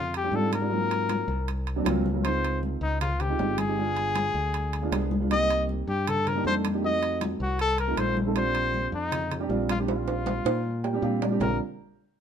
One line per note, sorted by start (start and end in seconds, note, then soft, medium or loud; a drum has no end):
0.00 0.28 F2 medium
0.00 0.14 F4 medium
0.14 0.37 G4 medium
0.14 high conga soft
0.14 high timbale medium
0.23 0.30 G3 medium
0.23 0.30 C4 medium
0.23 0.30 D4 medium
0.23 0.31 G4 medium
0.32 1.22 G#2 medium
0.32 0.53 G3 medium
0.32 0.53 C4 medium
0.32 0.54 D4 medium
0.32 0.54 F4 medium
0.32 0.53 A4 medium
0.32 high conga medium
0.52 1.64 A#4 medium
0.52 high conga medium
0.52 high timbale medium
0.61 0.68 G3 medium
0.61 0.68 C4 medium
0.61 0.68 D4 medium
0.61 0.69 F4 medium
0.70 1.24 F#3 medium
0.70 1.24 A#3 medium
0.70 1.25 C4 medium
0.70 1.25 F4 medium
0.70 high conga soft
0.91 high conga soft
0.91 high timbale medium
1.09 high conga medium
1.09 high timbale medium
1.28 1.82 C2 medium
1.28 high conga soft
1.48 high conga soft
1.48 high timbale medium
1.67 high conga soft
1.67 high timbale medium
1.76 1.83 F#3 medium
1.76 1.83 A#3 medium
1.76 1.84 C4 medium
1.76 1.84 D4 medium
1.85 2.75 C#2 medium
1.85 2.05 F#3 medium
1.85 2.06 A#3 medium
1.85 2.06 C4 medium
1.85 2.06 F4 loud
1.85 high conga medium
1.85 high timbale loud
1.85 low timbale medium
2.06 high conga medium
2.14 2.21 F#3 medium
2.14 2.21 A#3 medium
2.14 2.21 C4 medium
2.14 2.22 F4 medium
2.24 2.78 G#3 medium
2.24 2.78 C4 medium
2.24 2.78 D#4 medium
2.24 2.79 F4 medium
2.24 2.60 C5 medium
2.24 high conga soft
2.24 high timbale medium
2.44 high conga soft
2.44 high timbale medium
2.63 high conga medium
2.81 3.35 C#2 loud
2.81 3.00 D#4 medium
2.81 high conga soft
3.01 3.22 F4 medium
3.01 high conga soft
3.01 low conga medium
3.01 high timbale medium
3.20 3.60 G4 medium
3.20 high conga soft
3.20 low conga medium
3.20 high timbale medium
3.29 3.36 G#3 medium
3.29 3.36 C4 medium
3.29 3.36 D#4 medium
3.29 3.37 F4 medium
3.38 4.29 G1 medium
3.38 3.59 G#3 medium
3.38 3.59 C4 medium
3.38 3.59 D#4 medium
3.38 3.59 F4 medium
3.38 high conga medium
3.38 low timbale medium
3.58 5.12 G#4 loud
3.58 high conga medium
3.58 high timbale medium
3.67 3.74 G#3 medium
3.67 3.74 C4 medium
3.67 3.75 D#4 medium
3.67 3.75 G4 medium
3.77 4.31 G#3 medium
3.77 4.31 B3 medium
3.77 4.32 D4 medium
3.77 4.32 F4 medium
3.77 high conga soft
3.96 high conga soft
3.96 high timbale medium
4.15 high conga medium
4.15 high timbale medium
4.34 4.88 D2 medium
4.34 high conga soft
4.54 high conga soft
4.54 high timbale medium
4.73 high conga soft
4.73 high timbale medium
4.82 4.89 G#3 medium
4.82 4.89 B3 medium
4.82 4.89 D4 medium
4.82 4.90 F4 medium
4.91 5.82 C2 medium
4.91 5.12 G#3 medium
4.91 5.12 B3 medium
4.91 5.12 D4 medium
4.91 5.12 G#4 loud
4.91 high conga medium
4.91 high timbale loud
4.91 low timbale medium
5.11 high conga medium
5.20 5.27 G#3 medium
5.20 5.27 B3 medium
5.20 5.28 D4 medium
5.20 5.28 F4 medium
5.29 5.83 A#3 medium
5.29 5.84 C4 medium
5.29 5.84 D#4 medium
5.29 5.84 G4 medium
5.29 5.67 D#5 loud
5.29 high conga soft
5.29 high timbale medium
5.50 high timbale medium
5.69 high conga medium
5.88 6.41 G2 medium
5.88 6.10 G4 medium
5.88 high conga soft
6.07 6.30 A4 loud
6.07 high conga soft
6.07 low conga medium
6.07 high timbale medium
6.27 6.46 A#4 medium
6.27 high conga soft
6.27 low conga medium
6.27 high timbale medium
6.35 6.42 A#3 medium
6.35 6.42 D4 medium
6.35 6.43 D#4 medium
6.35 6.43 G4 medium
6.44 7.34 F2 medium
6.44 6.65 A#3 medium
6.44 6.65 D4 medium
6.44 6.65 D#4 medium
6.44 6.65 A4 medium
6.44 6.55 C5 medium
6.44 high conga medium
6.65 high conga medium
6.65 high timbale medium
6.73 6.80 A#3 medium
6.73 6.80 D4 medium
6.73 6.80 D#4 medium
6.73 6.81 G4 medium
6.82 7.36 A3 medium
6.82 7.36 C4 medium
6.82 7.37 D#4 medium
6.82 7.37 F#4 medium
6.82 7.20 D#5 loud
6.82 high conga soft
7.03 high conga soft
7.03 high timbale medium
7.21 high conga loud
7.21 high timbale medium
7.40 7.94 C2 medium
7.40 7.59 F#4 medium
7.40 high conga soft
7.59 7.78 A4 loud
7.59 high conga soft
7.59 high timbale medium
7.78 8.00 A#4 medium
7.78 high conga soft
7.78 high timbale medium
7.87 7.95 A3 medium
7.87 7.95 C4 medium
7.87 7.95 D#4 medium
7.87 7.95 F4 medium
7.97 8.87 A#1 medium
7.97 8.17 A3 medium
7.97 8.18 C4 medium
7.97 8.18 D#4 medium
7.97 8.18 F4 medium
7.97 8.17 C5 medium
7.97 high conga medium
7.97 high timbale medium
8.17 high conga medium
8.26 8.33 A3 medium
8.26 8.33 C4 medium
8.26 8.33 D#4 medium
8.26 8.34 A4 medium
8.35 8.89 G3 medium
8.35 8.89 C4 medium
8.35 8.89 D4 medium
8.35 8.89 F4 medium
8.35 8.90 C5 loud
8.35 high conga soft
8.35 high timbale medium
8.55 high conga soft
8.55 high timbale medium
8.74 high conga medium
8.92 9.46 F2 medium
8.92 9.40 D#4 medium
8.92 high conga soft
9.12 high conga soft
9.12 low conga medium
9.12 high timbale medium
9.31 high conga soft
9.31 low conga medium
9.31 high timbale medium
9.40 9.47 G3 medium
9.40 9.47 C4 medium
9.40 9.47 D4 medium
9.40 9.47 G4 loud
9.49 10.39 A#1 medium
9.49 9.70 G3 medium
9.49 9.70 C4 medium
9.49 9.70 D4 medium
9.49 9.70 F4 loud
9.49 high conga medium
9.69 9.79 F4 medium
9.69 high conga medium
9.69 high timbale medium
9.78 9.85 G3 medium
9.78 9.85 C4 medium
9.78 9.86 D4 medium
9.78 9.86 G4 medium
9.87 10.41 G3 medium
9.87 10.41 C4 medium
9.87 10.41 D4 medium
9.87 10.42 F4 medium
9.87 10.99 F4 medium
9.87 high conga soft
9.87 high timbale medium
10.07 high conga soft
10.07 high timbale medium
10.26 high conga medium
10.26 high timbale medium
10.45 10.98 A#2 medium
10.45 high timbale medium
10.65 high conga soft
10.84 11.01 G5 medium
10.84 high conga soft
10.84 low timbale medium
10.93 11.00 G3 medium
10.93 11.00 C4 medium
10.93 11.00 D4 medium
10.93 11.00 G4 loud
11.01 11.36 A#2 medium
11.01 11.22 G3 medium
11.01 11.22 C4 medium
11.01 11.22 D4 medium
11.01 11.23 G4 loud
11.01 11.20 F5 medium
11.01 high conga medium
11.22 11.39 D5 medium
11.22 high conga medium
11.22 low timbale medium
11.30 11.37 G3 medium
11.30 11.38 C4 medium
11.30 11.38 D4 medium
11.30 11.38 G4 loud
11.40 11.58 A#1 medium
11.40 11.58 G3 medium
11.40 11.58 C4 medium
11.40 11.58 D4 medium
11.40 11.59 F4 medium
11.40 11.59 A#4 medium
11.40 low conga loud
11.40 low timbale loud